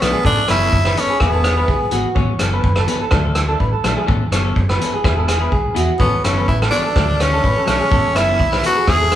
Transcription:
0.01 B1 F#3 A3 B3 D4 A4, cross-stick, closed hi-hat
0.13 G#4
0.23 A1 E3 B3 C#4 D4 A4, kick
0.48 F#1 E3 B3 C#4 E4 A4 C#5, cross-stick, closed hi-hat
0.62 B3 C#4 A4
0.73 F#1, kick
0.85 B4, cross-stick
0.96 E3 B3 C#4 A4, closed hi-hat
1.10 G#4
1.20 E1 B3 E4 G#4, muted clean electric guitar stroke, kick, cross-stick
1.33 B3 E4 G#4 A4
1.44 G#4, cross-stick, closed hi-hat
1.57 B3 E4 G#4 B4
1.68 B1 G#4, kick
1.91 G#1 E3 B3 F#4 G#4, closed hi-hat
2.15 A1 E3 B3 C#4 C#5, muted clean electric guitar stroke, kick
2.39 F#1 E3 B3 C#4 A4, cross-stick, closed hi-hat
2.50 B3 C#4 A4 B4
2.64 F#1, kick
2.76 A4, cross-stick
2.87 E3 B3 C#4 A4 B4, closed hi-hat
3.01 A4
3.11 D2 F#3 A3 D4 A4, kick, cross-stick
3.24 A3 D4 A4
3.35 cross-stick, closed hi-hat
3.48 A3 D4 A4
3.60 A1 B4, kick
3.73 A4
3.84 A#1 F#3 A3 D4 A4, cross-stick, closed hi-hat
3.97 G#4
4.06 A1 E3 B3 C#4 A4, muted clean electric guitar stroke, kick
4.31 F#1 E3 B3 C#4 A4 C#5, cross-stick, closed hi-hat
4.45 B3 C#4 A4
4.56 F#1, kick
4.69 B4, cross-stick
4.79 E3 B3 C#4 A4, closed hi-hat
4.94 G#4
5.04 E1 E3 B3 E4 G#4, kick, cross-stick
5.16 B3 E4 G#4 A4
5.28 G#4, cross-stick, closed hi-hat
5.40 B3 E4 G#4 B4
5.52 B1 G#4, kick
5.75 E2 E3 B3 E4 F#4 G#4, closed hi-hat
5.99 A1 E3 B3 C#4 A4 C#5, kick
6.24 F#1 E3 B3 C#4 A4, cross-stick, closed hi-hat
6.37 B3 C#4 A4 B4
6.48 A1 E4, kick
6.62 A4, cross-stick
6.71 E3 B3 C#4 D4 A4 C#5, closed hi-hat
6.85 A4
6.96 D2 F#3 A3 D4 A4, kick, cross-stick
7.08 A3 D4 A4
7.20 C#4, cross-stick, closed hi-hat
7.32 A3 D4 A4
7.44 A1 B4, kick
7.58 A4
7.66 B1 F#3 A3 C#4 D4 A4, cross-stick, closed hi-hat
7.80 G#4
7.90 A1 E3 B3 C#4 A4, kick
8.15 F#1 B3 C#4 E4 A4 E5, cross-stick, closed hi-hat
8.29 B3 C#4
8.39 B1, kick
8.53 B4, cross-stick
8.63 E3 B3 C#4 F#4 A4, closed hi-hat
8.76 G#4
8.87 E1 E3 B3 E4 G#4, kick, cross-stick
9.00 B3 E4 G#4 A4
9.11 G#4, cross-stick, closed hi-hat

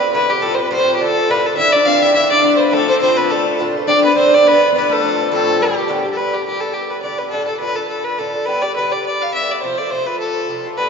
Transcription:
Already playing: B4
0.01 D3 B3 E4
0.13 G2 D3 B3 E4 B4
0.29 D3 B3 E4 G4
0.41 A2 F3 C4 F4 A4
0.55 F4 C5
0.60 F3 C4 B4
0.71 A2 F3 C4 F4 C5
0.96 A2 G4
1.00 D3 A3 F4 A4
1.17 D3 A3 F4
1.28 A2 D3 A3 F4 B4
1.43 D3 A3 F4 A4
1.56 G2 D3 C4 D4 E4 F4 E5
1.72 D3 C4 D4 D5
1.85 G2 D3 C4 D4 F4 F5
2.02 E4 E5
2.14 G2 D3 B3 E4 E5
2.29 D3 B3 D4 E4 D5
2.41 G2 D3 B3 E4
2.57 B3 E4 B4 C5
2.61 D3
2.71 A2 F3 A3 C4 F4 A4
2.88 F3 C4 F4 C5
3.00 A2 F3 C4 F4 C5
3.17 B3 B4
3.29 A2 D3 A3 F4 A4
3.46 D3 A3 F4
3.59 A2 D3 A3 F4
3.76 D3 A3 F4
3.87 G2 D3 C4 D4 D5
4.03 D3 B3 C4 D4 B4
4.15 G2 D3 C4 D4 C5
4.30 D4 D5
4.45 G2 D3 B3 E4 B4
4.62 D3 B3 E4
4.72 G2 D3 B3
4.77 B3 E4 B4
4.89 A3 B3 E4 A4
4.94 D3
5.03 A2 F3 C4 F4
5.20 F3 C4 F4
5.31 A2 F3 A3 C4 F4 A4
5.59 A2 D3 G3 B3 G4
5.77 D3 B3 G4
5.88 A2 D3 B3 G4
6.05 D3 B3 G4
6.13 A4 B4
6.18 G2 D3 B3 G4
6.33 D3 B3 G4
6.46 G2 D3 B3 G4
6.61 D3 B3 G4 A4
6.74 G4
6.90 B4
7.03 G2 D3 B3 G4 D5
7.18 D3 B3 G4 B4
7.30 A2 D3 D4 F4 A4
7.47 D3 D4 F4 A4
7.59 A2 D3 D4 F4 B4
7.75 D3 D4 F4 A4
7.88 A4
8.04 B4
8.18 A2 D3 D4 F4 A4
8.33 D3 D4 F4
8.46 G2 D3 B3 G4 B4
8.62 B3 G4 D5
8.66 D3
8.76 G2 D3 B3 G4 B4
8.91 D3 B3 G4 D5
9.06 D5
9.22 F5
9.33 G2 D3 B3 G4 E5
9.49 D3 B3 G4 D5
9.62 C3 F3 A3 F4 C5
9.78 F3 A3 F4 D5
9.90 C3 F3 A3 F4 C5
10.06 F3 A3 F4 B4
10.20 A4
10.48 C3 F3 A3 F4
10.66 F3 A3 F4
10.77 G2 D3 B3 G4 B4

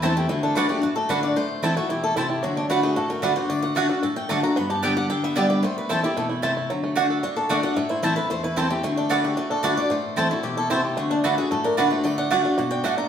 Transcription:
Already playing: E2 E4 A4
0.02 E3 A3 C4 E4 A4 C5 A5
0.17 E4 G4
0.29 D3 A3 F#4
0.43 D4 A4
0.55 D3 A3 D4 F#4 B4 D5 F#5
0.69 A3 D4 F#4 G4
0.82 A2 F#4
0.96 A3 A4
1.09 D3 A3 D4 F#4 B4 D5 F#5
1.23 F#4 D5
1.36 A2 A3 C5
1.62 E3 A3 C4 E4 A4 C5 A5
1.77 A3 C4 E4 F#4
1.89 B2 E4 G4
2.03 A3 A4
2.16 C3 C4 E4 F#4 C5 A5
2.30 E4 G4
2.43 D3 F#3 F#4
2.57 A3 D4
2.69 D3 A3 D4 F#4 B4 D5 F#5
2.83 A3 G#4
2.96 A2 F#4 A4
3.10 A3 A#4
3.22 D3 A3 D4 F#4 B4 D5 F#5
3.36 D4 F#4 C5
3.50 D3 A3 D5
3.62 F#4 F#5
3.75 D3 A3 D4 F#4 A4 D5 E5 F#5
3.89 D4 F#4 F5
4.03 A2 A4 F#5
4.16 A3 G5
4.29 D3 A3 D4 F#4 A4 D5 F#5 A5
4.43 D4 F#4 A#5
4.56 G2 B3 B5
4.70 G4 A5
4.83 D3 G3 B3 G4 A4 D5 G5
4.97 G4 F#5
5.10 D3 A4 G5
5.24 B3 E5
5.36 D3 G3 B3 G4 A4 D5 G5
5.50 G4 B4
5.63 A2 A3 C5
5.78 B4
5.89 E3 A3 C4 E4 A4 C5 A5
6.03 C4 E4 G4
6.17 B2 A3 A4
6.29 E4
6.42 C3 A3 C4 E4 C5 A5
6.57 E4
6.70 D3 F#3
6.84 A3
6.96 D3 A3 D4 F#4 D5 F#5
7.10 A4
7.23 A2 D4 F#5
7.36 F#4 A4
7.49 D3 A3 D4 F#4 A4 D5 F#5
7.63 D4 F#4 F#5
7.76 A2 A3 E5
7.89 E4 C5
8.03 E3 A3 C4 E4 A4 C5 A5
8.16 C4 E4 A4 B4
8.30 E2 A3 C5
8.44 E4 B4
8.56 E3 A3 C4 E4 A4 C5 A5
8.70 A3 C4 E4 G4
8.83 D3 A3 F#4
8.97 D4 A4
9.09 D3 A3 D4 F#4 A4 B4 D5 F#5
9.24 F#4 G4
9.37 A2 A3 F#4
9.50 D4 A4
9.63 D3 A3 D4 F#4 B4 D5 F#5
9.76 A3 D4 F#4 D5
9.90 A2 A3 C5
10.16 E3 A3 C4 E4 A4 C5 A5
10.30 C4 E4 F#4
10.43 B2 A3 G4
10.57 E4 A4
10.70 C3 C4 E4 F#4 C5 A5
10.84 A3 G4
10.97 D3 A3 F#4
11.10 D4
11.24 D3 A3 D4 F#4 A4 B4 D5 F#5
11.38 D4 F#4 G#4
11.51 A2 A3 A4
11.64 D4 A#4
11.77 D3 A3 D4 F#4 B4 D5 F#5
11.91 A3 D4 F#4 C5
12.04 D3 A3 D5
12.18 D4 F#5
12.31 D3 A3 D4 F#4 D5 E5 F#5
12.44 D4 F#4 F5
12.58 B2 F#4 F#5
12.71 D4 G5
12.84 A2 A3 F#4 D5 F#5 A5
12.97 D4 A#5

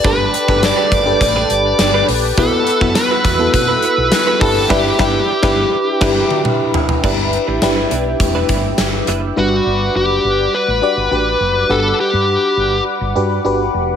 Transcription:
Already playing: D4 G4 A4 B4 G5 A5 D6
0.04 G1 A3 D4 G4 A4 B4 D5, kick
0.19 muted clean electric guitar stroke
0.34 muted clean electric guitar stroke, closed hi-hat
0.48 G1 A3 D4 G4 A4 B4, kick
0.63 D5, muted clean electric guitar stroke, snare, closed hi-hat, tambourine
0.77 A3 D4 G4 B4
0.92 G1 A3 D4 G4 B4, kick, closed hi-hat
1.06 D4 G4 A4 B4, muted clean electric guitar stroke
1.21 A1 D5, muted clean electric guitar stroke, kick, closed hi-hat
1.36 A3 D4 G4 B4
1.50 G1, muted clean electric guitar stroke, closed hi-hat
1.66 muted clean electric guitar stroke
1.79 G1, muted clean electric guitar stroke, snare, closed hi-hat, tambourine
1.94 A3 D4 G4 B4
2.08 A#1, muted clean electric guitar stroke, open hi-hat
2.24 muted clean electric guitar stroke
2.37 B1 B3 E4 F#4 A4 B4 E5 F#5 E6, kick, closed hi-hat
2.53 muted clean electric guitar stroke
2.67 muted clean electric guitar stroke, closed hi-hat
2.81 F#2 B3 E4 F#4 B4, kick
2.95 B4, snare, closed hi-hat, tambourine
3.11 B3 E4 F#4 B4
3.25 E2 B3 E4 F#4 B4, kick, closed hi-hat
3.39 B3 E4 F#4 A4, muted clean electric guitar stroke
3.53 B2 B4, muted clean electric guitar stroke, kick, closed hi-hat
3.68 B3 E4 F#4 B4
3.82 B3 E4 F#4 B4, closed hi-hat
3.98 B1, muted clean electric guitar stroke
4.12 muted clean electric guitar stroke, snare, closed hi-hat, tambourine
4.27 B3 E4 F#4 B4
4.41 G1 D4 E4 G4 A4 B4 G5 D6, muted clean electric guitar stroke, kick, open hi-hat
4.56 muted clean electric guitar stroke
4.70 G1 B3 D4 E4 G4 B4, kick, snare, crash
4.99 G1 B3 D4 E4 G4 B4, kick, snare
5.43 G1 B3 D4 E4 G4 B4, kick, snare
6.01 G1 B3 D4 E4 G4 B4, kick, snare, crash
6.31 high tom
6.45 mid tom
6.74 floor tom
6.89 floor tom
7.04 G1 G3 D4 E4 G4 B4 E5 G5 D6, kick, crash
7.33 muted clean electric guitar stroke, closed hi-hat
7.47 A1 G3 D4 E4 B4
7.62 G1 D4 E4 G4 B4, muted clean electric guitar stroke, snare, closed hi-hat
7.76 G3 D4 E4 B4
7.91 B1 G3 D4 E4 B4, closed hi-hat
8.06 muted clean electric guitar stroke
8.20 E1, muted clean electric guitar stroke, kick, closed hi-hat
8.35 G3 D4 E4 B4
8.49 G1 G3 D4 E4 B4, kick, closed hi-hat
8.64 muted clean electric guitar stroke
8.78 G1, muted clean electric guitar stroke, snare, closed hi-hat
8.94 muted clean electric guitar stroke
9.07 F#1 G3 D4 E4 B4, closed hi-hat
9.23 muted clean electric guitar stroke
9.36 G1 G3 D4 F#4 B4 D5 F#5 D6
9.66 G1
9.95 F#1 G4
10.24 G1
10.54 B4
10.68 A1
10.82 D4 F#4 G4 D5
10.97 G1
11.11 A1 D4 F#4 G4 B4
11.40 F#1
11.69 G1 D4 G4 A4 B4 F#5
12.00 G4
12.13 G2
12.57 G1
13.01 G1
13.15 G2 D4 F#4 G4 B4
13.45 G1 D4 F#4 G4 B4
13.74 F1

